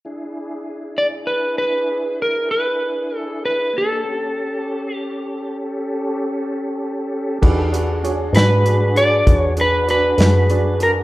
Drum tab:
CC |------------|------------|x-----------|
HH |------------|------------|-xxxxxxxxxxx|
SD |------------|------------|---o-----o--|
BD |------------|------------|o-----o-----|